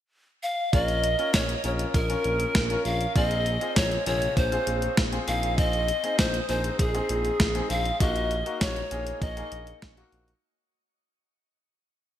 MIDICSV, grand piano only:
0, 0, Header, 1, 2, 480
1, 0, Start_track
1, 0, Key_signature, -5, "minor"
1, 0, Tempo, 606061
1, 580, Time_signature, 4, 2, 24, 8
1, 9659, End_track
2, 0, Start_track
2, 0, Title_t, "Grand piano"
2, 0, Program_c, 0, 0
2, 580, Note_on_c, 0, 61, 69
2, 580, Note_on_c, 0, 65, 67
2, 580, Note_on_c, 0, 70, 78
2, 825, Note_off_c, 0, 61, 0
2, 825, Note_off_c, 0, 65, 0
2, 825, Note_off_c, 0, 70, 0
2, 939, Note_on_c, 0, 61, 70
2, 940, Note_on_c, 0, 65, 64
2, 940, Note_on_c, 0, 70, 76
2, 1185, Note_off_c, 0, 61, 0
2, 1185, Note_off_c, 0, 65, 0
2, 1185, Note_off_c, 0, 70, 0
2, 1300, Note_on_c, 0, 61, 69
2, 1300, Note_on_c, 0, 65, 64
2, 1300, Note_on_c, 0, 70, 77
2, 1545, Note_off_c, 0, 61, 0
2, 1545, Note_off_c, 0, 65, 0
2, 1545, Note_off_c, 0, 70, 0
2, 1659, Note_on_c, 0, 61, 75
2, 1659, Note_on_c, 0, 65, 64
2, 1660, Note_on_c, 0, 70, 80
2, 1987, Note_off_c, 0, 61, 0
2, 1987, Note_off_c, 0, 65, 0
2, 1987, Note_off_c, 0, 70, 0
2, 2139, Note_on_c, 0, 61, 72
2, 2139, Note_on_c, 0, 65, 67
2, 2139, Note_on_c, 0, 70, 77
2, 2385, Note_off_c, 0, 61, 0
2, 2385, Note_off_c, 0, 65, 0
2, 2385, Note_off_c, 0, 70, 0
2, 2499, Note_on_c, 0, 60, 74
2, 2499, Note_on_c, 0, 65, 63
2, 2500, Note_on_c, 0, 68, 79
2, 2745, Note_off_c, 0, 60, 0
2, 2745, Note_off_c, 0, 65, 0
2, 2745, Note_off_c, 0, 68, 0
2, 2859, Note_on_c, 0, 65, 64
2, 2859, Note_on_c, 0, 68, 76
2, 2860, Note_on_c, 0, 60, 71
2, 3105, Note_off_c, 0, 60, 0
2, 3105, Note_off_c, 0, 65, 0
2, 3105, Note_off_c, 0, 68, 0
2, 3219, Note_on_c, 0, 65, 65
2, 3219, Note_on_c, 0, 68, 78
2, 3220, Note_on_c, 0, 48, 70
2, 3465, Note_off_c, 0, 48, 0
2, 3465, Note_off_c, 0, 65, 0
2, 3465, Note_off_c, 0, 68, 0
2, 3579, Note_on_c, 0, 60, 73
2, 3579, Note_on_c, 0, 65, 66
2, 3579, Note_on_c, 0, 68, 81
2, 3907, Note_off_c, 0, 60, 0
2, 3907, Note_off_c, 0, 65, 0
2, 3907, Note_off_c, 0, 68, 0
2, 4059, Note_on_c, 0, 60, 71
2, 4059, Note_on_c, 0, 65, 63
2, 4059, Note_on_c, 0, 68, 76
2, 4168, Note_off_c, 0, 60, 0
2, 4168, Note_off_c, 0, 68, 0
2, 4180, Note_off_c, 0, 65, 0
2, 4180, Note_on_c, 0, 60, 73
2, 4180, Note_on_c, 0, 63, 68
2, 4180, Note_on_c, 0, 68, 82
2, 4660, Note_off_c, 0, 60, 0
2, 4660, Note_off_c, 0, 63, 0
2, 4660, Note_off_c, 0, 68, 0
2, 4780, Note_on_c, 0, 60, 72
2, 4780, Note_on_c, 0, 63, 65
2, 4780, Note_on_c, 0, 68, 79
2, 5025, Note_off_c, 0, 63, 0
2, 5025, Note_off_c, 0, 68, 0
2, 5026, Note_off_c, 0, 60, 0
2, 5140, Note_on_c, 0, 60, 71
2, 5140, Note_on_c, 0, 63, 64
2, 5141, Note_on_c, 0, 68, 79
2, 5386, Note_off_c, 0, 60, 0
2, 5386, Note_off_c, 0, 63, 0
2, 5386, Note_off_c, 0, 68, 0
2, 5501, Note_on_c, 0, 60, 72
2, 5501, Note_on_c, 0, 63, 68
2, 5501, Note_on_c, 0, 68, 80
2, 5828, Note_off_c, 0, 60, 0
2, 5828, Note_off_c, 0, 63, 0
2, 5828, Note_off_c, 0, 68, 0
2, 5980, Note_on_c, 0, 60, 72
2, 5980, Note_on_c, 0, 68, 79
2, 5981, Note_on_c, 0, 63, 64
2, 6226, Note_off_c, 0, 60, 0
2, 6226, Note_off_c, 0, 63, 0
2, 6226, Note_off_c, 0, 68, 0
2, 6341, Note_on_c, 0, 58, 70
2, 6341, Note_on_c, 0, 63, 66
2, 6341, Note_on_c, 0, 66, 80
2, 6586, Note_off_c, 0, 58, 0
2, 6586, Note_off_c, 0, 63, 0
2, 6586, Note_off_c, 0, 66, 0
2, 6700, Note_on_c, 0, 58, 70
2, 6700, Note_on_c, 0, 63, 64
2, 6700, Note_on_c, 0, 66, 76
2, 6946, Note_off_c, 0, 58, 0
2, 6946, Note_off_c, 0, 63, 0
2, 6946, Note_off_c, 0, 66, 0
2, 7061, Note_on_c, 0, 58, 69
2, 7061, Note_on_c, 0, 63, 65
2, 7061, Note_on_c, 0, 68, 77
2, 7306, Note_off_c, 0, 58, 0
2, 7306, Note_off_c, 0, 63, 0
2, 7306, Note_off_c, 0, 68, 0
2, 7420, Note_on_c, 0, 58, 72
2, 7420, Note_on_c, 0, 63, 68
2, 7420, Note_on_c, 0, 68, 77
2, 7747, Note_off_c, 0, 58, 0
2, 7747, Note_off_c, 0, 63, 0
2, 7747, Note_off_c, 0, 68, 0
2, 7899, Note_on_c, 0, 66, 94
2, 7900, Note_on_c, 0, 58, 82
2, 7900, Note_on_c, 0, 63, 74
2, 8145, Note_off_c, 0, 58, 0
2, 8145, Note_off_c, 0, 63, 0
2, 8145, Note_off_c, 0, 66, 0
2, 9659, End_track
0, 0, End_of_file